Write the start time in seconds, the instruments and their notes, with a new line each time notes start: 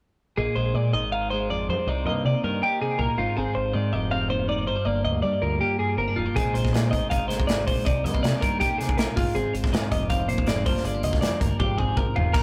0.37 fingered electric bass A#1, clean electric guitar A#2 D#4 G#4
0.56 fingered electric bass A#1, clean electric guitar G#3 C5
0.74 fingered electric bass A#2, clean electric guitar D5
0.93 fingered electric bass G#1, clean electric guitar D#3 D#5
1.12 clean electric guitar D#4 F5
1.31 clean electric guitar G#3 C5
1.50 clean electric guitar F2 D5
1.69 fingered electric bass G2, clean electric guitar C4 C5
1.87 fingered electric bass C2, clean electric guitar C3 D#4 D5
2.05 fingered electric bass G2, clean electric guitar A#3 D#5
2.25 fingered electric bass C3, clean electric guitar D5
2.44 fingered electric bass G2, clean electric guitar D#3 A#4
2.63 clean electric guitar D#4 G4
2.81 clean electric guitar C3 G#4
2.99 fingered electric bass C2, clean electric guitar A#2 A#4
3.18 fingered electric bass G#1, clean electric guitar G#2 D#3 C4 D#4 F4
3.37 fingered electric bass G#1, clean electric guitar C4 G#4
3.55 fingered electric bass G#1, clean electric guitar C5
3.74 fingered electric bass G#2, clean electric guitar D#3 D5
3.92 fingered electric bass F1, clean electric guitar G4 D#5
4.11 clean electric guitar C4 F5
4.29 clean electric guitar D#2 C5
4.48 clean electric guitar D#4 D5
4.67 fingered electric bass G1, clean electric guitar G2 D#4 C5
4.76 clean electric guitar F4
4.85 fingered electric bass G1, clean electric guitar A#3 D5
5.05 fingered electric bass D2, clean electric guitar D#5
5.22 fingered electric bass G2, clean electric guitar G3 D5
5.42 fingered electric bass D2, clean electric guitar F4 A#4
5.61 clean electric guitar A#3 G4
5.79 clean electric guitar G2 G#4
5.97 fingered electric bass G1, clean electric guitar C4 A#4
6.08 clean electric guitar D4
6.16 fingered electric bass F1, clean electric guitar G2 D#4 F4
6.26 clean electric guitar F4
6.34 fingered electric bass A#1, clean electric guitar A#2 D#3 G#3 C4 D#4 G#4, kick, closed hi-hat
6.53 fingered electric bass A#1, clean electric guitar G#3 C5, closed hi-hat
6.65 kick, snare
6.73 fingered electric bass A#2, clean electric guitar D5, snare, closed hi-hat
6.91 fingered electric bass G#1, clean electric guitar D#3 D#5, kick, closed hi-hat
7.10 clean electric guitar D#4 F5, kick, closed hi-hat
7.28 clean electric guitar G#3 C5, snare, closed hi-hat
7.40 kick
7.47 clean electric guitar G#2 D5, snare, closed hi-hat
7.66 fingered electric bass G#1, clean electric guitar A#2 C5, kick, open hi-hat
7.85 fingered electric bass C2, clean electric guitar C3 D#4 D5, kick, closed hi-hat
8.04 fingered electric bass G2, clean electric guitar G#3 D#5, closed hi-hat
8.14 clean electric guitar A#3, kick
8.23 fingered electric bass C3, clean electric guitar D5, snare, closed hi-hat
8.41 fingered electric bass G2, clean electric guitar D#3 A#4, kick, closed hi-hat
8.60 clean electric guitar D#4 G4, kick, closed hi-hat
8.78 clean electric guitar C3 G#4, snare, closed hi-hat
8.89 kick
8.98 fingered electric bass A#1, clean electric guitar A#2 A#4, snare, closed hi-hat
9.16 fingered electric bass G#1, clean electric guitar G#2 F4, kick, open hi-hat
9.35 fingered electric bass G#1, clean electric guitar C4 G#4, closed hi-hat
9.53 fingered electric bass G#1, clean electric guitar C5, closed hi-hat
9.64 kick, snare
9.72 fingered electric bass G#2, clean electric guitar D#3 D5, snare, closed hi-hat
9.91 fingered electric bass F1, clean electric guitar G4 D#5, kick, closed hi-hat
10.10 clean electric guitar C4 F5, kick, closed hi-hat
10.28 clean electric guitar A#2 C5, closed hi-hat
10.38 kick
10.47 clean electric guitar G#2 D5, snare, closed hi-hat
10.66 fingered electric bass G1, clean electric guitar G2 G3 A#3 D4 F4 C5, kick, open hi-hat
10.77 snare
10.84 fingered electric bass G1, clean electric guitar G#3 D5, closed hi-hat
10.94 clean electric guitar A#3
11.03 fingered electric bass D2, clean electric guitar D#5, closed hi-hat
11.13 kick, snare
11.21 clean electric guitar F2 D5, fingered electric bass G2, snare, closed hi-hat
11.40 fingered electric bass D2, clean electric guitar G2 A#4, kick, closed hi-hat
11.59 fingered electric bass G#1, clean electric guitar G#2 F4 G4, kick, high tom
11.78 clean electric guitar C4 G#4, kick
11.97 fingered electric bass G#1, clean electric guitar A#4, kick
12.14 fingered electric bass F1, clean electric guitar D#3 F4, floor tom
12.33 fingered electric bass A#1, clean electric guitar A#2 A#4, kick, crash